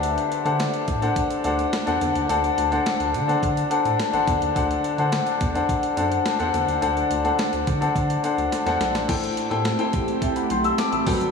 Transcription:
<<
  \new Staff \with { instrumentName = "Grand piano" } { \time 4/4 \key d \mixolydian \tempo 4 = 106 << { r1 | r1 | r1 | r1 |
r2 <e'' a''>16 <fis'' b''>16 <g'' c'''>16 <b'' e'''>16 <a'' d'''>16 <b'' e'''>8 r16 | } \\ { <d' a' c'' fis''>8 r16 <d' a' c'' fis''>8. r16 <d' a' c'' fis''>8 r16 <d' a' c'' fis''>8 r16 <d' a' c'' fis''>8 r16 | <d' a' c'' fis''>8 r16 <d' a' c'' fis''>8. r16 <d' a' c'' fis''>8 r16 <d' a' c'' fis''>8 r16 <d' a' c'' fis''>8 r16 | <d' a' c'' fis''>8 r16 <d' a' c'' fis''>8. r16 <d' a' c'' fis''>8 r16 <d' a' c'' fis''>8 r16 <d' a' c'' fis''>8 r16 | <d' a' c'' fis''>8 r16 <d' a' c'' fis''>8. r16 <d' a' c'' fis''>8 r16 <d' a' c'' fis''>8 r16 <d' a' c'' fis''>8 r16 |
<e' a' c'' g''>8 r16 <e' a' c'' g''>16 r16 <e' a' c'' g''>4~ <e' a' c'' g''>16 r4 <fis a' b' g''>8 | } >> }
  \new Staff \with { instrumentName = "Grand piano" } { \clef bass \time 4/4 \key d \mixolydian d4 r2 r8 d8~ | d4 r2 r8 d8~ | d4 r2 r8 d8~ | d4 r2. |
a,4. r2 g,8 | }
  \new Staff \with { instrumentName = "Analog synth pad" } { \time 4/4 \key d \mixolydian r1 | r1 | r1 | r1 |
<a c' g'>2.~ <a c' g'>8 <fis d' a' b'>8 | }
  \new Staff \with { instrumentName = "Analog synth bass" } { \clef bass \time 4/4 \key d \mixolydian d,8 r16 d8 r16 a,8 r8 d,8 r16 e,16 e,16 ees,16 | d,8 d,8 r16 d,16 d8 d8 r16 a,16 r16 a,,16 e,16 ees,16 | d,8 r16 d8 r16 e,8 r8 fis,8 r16 e,16 e,16 ees,16 | d,8 d,8 r16 d,16 d8 d8 r16 d,16 r16 e,16 b,,16 bes,,16 |
a,,8 r16 a,8 r16 a,,8 r8 b,,8 r16 a,,16 g,,16 aes,,16 | }
  \new DrumStaff \with { instrumentName = "Drums" } \drummode { \time 4/4 hh16 hh16 hh16 hh16 <hh sn>16 hh16 <hh bd>16 hh16 <hh bd>16 hh16 hh16 hh16 <hh sn>16 hh16 hh16 hh16 | hh16 hh16 hh16 hh16 <hh sn>16 hh16 hh16 hh16 <hh bd>16 hh16 hh16 hh16 <hh sn>16 hh16 <hh bd>16 hh16 | <hh bd>16 hh16 hh16 hh16 <hh sn>16 hh16 <hh bd>16 hh16 <hh bd>16 hh16 hh16 hh16 <hh sn>16 hh16 hh16 hh16 | hh16 hh16 hh16 hh16 <hh sn>16 hh16 <hh bd>16 hh16 <hh bd>16 hh16 hh16 hh16 <hh sn>16 <hh sn>16 <hh sn>16 <hh sn>16 |
<cymc hh bd>16 hh16 hh16 hh16 <hh sn>16 hh16 <hh bd>16 hh16 <hh bd>16 hh16 hh16 hh16 <hh sn>16 hh16 <hho bd>16 hh16 | }
>>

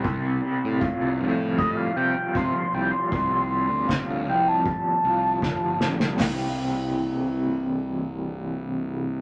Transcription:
<<
  \new Staff \with { instrumentName = "Analog synth lead" } { \time 4/4 \key c \major \tempo 4 = 78 r2 ees''16 f''16 g''8 c'''8 g''16 c'''16~ | c'''8 c'''8 r8 g''16 a''16 a''2 | r1 | }
  \new Staff \with { instrumentName = "Overdriven electric guitar" } { \clef bass \time 4/4 \key c \major c8 g8 f'8 f8 g8 f'8 f8 g8 | c8 g8 f'8 f8 g8 f'8 f8 g8 | <c e g c' g'>1 | }
  \new Staff \with { instrumentName = "Picked electric bass" } { \clef bass \time 4/4 \key c \major c,8 r16 a,16 r16 c,16 a,4 c16 r16 c16 r16 c,16 r16 | c,8. d,16 r16 d,16 c,8 r8 c,8 f,,16 g,,16 a,,16 c,16 | c,1 | }
  \new DrumStaff \with { instrumentName = "Drums" } \drummode { \time 4/4 bd4 bd4 bd4 bd4 | bd4 <bd sn>4 bd4 <bd sn>8 sn16 sn16 | <hho sn tomfh>4 r4 r4 r4 | }
>>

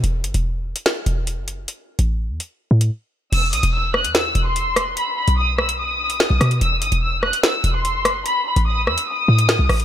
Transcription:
<<
  \new Staff \with { instrumentName = "Violin section" } { \time 4/4 \key b \phrygian \tempo 4 = 146 r1 | r1 | e'''8 dis'''8 e'''8 fis'''8 e'''8. c'''4~ c'''16 | b''8 b''8 dis'''8 e'''8 dis'''2 |
e'''8 dis'''8 e'''8 fis'''8 e'''8. c'''4~ c'''16 | b''8 b''8 dis'''8 e'''8 dis'''2 | }
  \new Staff \with { instrumentName = "808-style bass" } { \clef bass \time 4/4 \key b \phrygian e,,8 g,,16 e,,4 r8. e,,8. fis,,8. | r8. a,,8. e,16 r8. a,8 r4 | e,,8 b,,16 e,,4 e,8. e,,8. dis,,16. e,,16. | r8. b,,2~ b,,8 b,,16 b,8 |
e,,8 g,,16 e,,4 r8. e,,8. fis,,8. | r8. a,,8. e,16 r8. a,8. c,16 a,,8 | }
  \new DrumStaff \with { instrumentName = "Drums" } \drummode { \time 4/4 hh8 hh16 hh16 r8. hh16 sn8 hh8 hh8 hh8 | hh8. hh16 r8. hh16 r8. hh16 r4 | <cymc hh>8 hh16 hh16 r8 ss16 hh16 sn8 hh8 hh8 <hh ss>8 | hh8. hh16 r8 ss16 hh16 r8. hh16 sn8 <hh ss>16 hh16 |
hh8 hh16 hh16 r8 ss16 hh16 sn8 hh8 hh8 <hh ss>8 | hh8. hh16 r8 ss16 hh16 r8. hh16 sn8 <hho ss>16 hh16 | }
>>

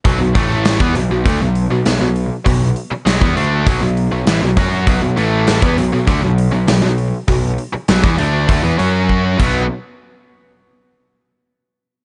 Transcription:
<<
  \new Staff \with { instrumentName = "Distorted electric guitar" } { \clef bass \time 4/4 \key b \minor \tempo 4 = 100 <b, fis>16 <b, fis>16 <a, e a>8. <e b>16 <b, fis>16 <b, fis>16 <d a>16 <b, fis>8 <b, fis>16 <b, fis>16 <b, fis>8 r16 | <b, fis>8 r8 <b, fis>16 <e b>16 <d a d'>8 <b, fis>16 <b, fis>8 <b, fis>16 <a, e>16 <b, fis>16 <fis cis' fis'>8 | <b, fis>16 <b, fis>16 <a, e a>8. <e b>16 <b, fis>16 <b, fis>16 <d a>16 <b, fis>8 <b, fis>16 <b, fis>16 <b, fis>8 r16 | <b, fis>8 r8 <b, fis>16 <e b>16 <d a d'>8 <d a>16 <e b>16 <fis cis' fis'>4 <b, fis b>8 |
r1 | }
  \new Staff \with { instrumentName = "Picked electric bass" } { \clef bass \time 4/4 \key b \minor b,,16 b,,16 a,,8. e,16 b,,16 b,,16 d,16 b,,8 b,,16 b,,16 b,,8 r16 | b,,8 r8 b,,16 e,16 d,8 b,,16 b,,8 b,,16 a,,16 b,,16 fis,8 | b,,16 b,,16 a,,8. e,16 b,,16 b,,16 d,16 b,,8 b,,16 b,,16 b,,8 r16 | b,,8 r8 b,,16 e,16 d,8 d,16 e,16 fis,4 b,,8 |
r1 | }
  \new DrumStaff \with { instrumentName = "Drums" } \drummode { \time 4/4 <hho bd>8 <hho bd>8 <hho sn>16 bd16 hho8 <hho bd>8 hho8 <hho sn>8 hho8 | <hho bd>8 hho8 <hho sn>16 bd16 hho8 <hho bd>8 hho8 <hho sn>8 <hho bd>8 | <hho bd>8 hho8 <hho sn>16 bd16 hho8 <hho bd>8 hho8 <hho sn>8 hho8 | <hho bd>8 hho8 <hho sn>16 bd16 hho8 <hho bd>8 hho8 bd8 <cymc bd>8 |
r4 r4 r4 r4 | }
>>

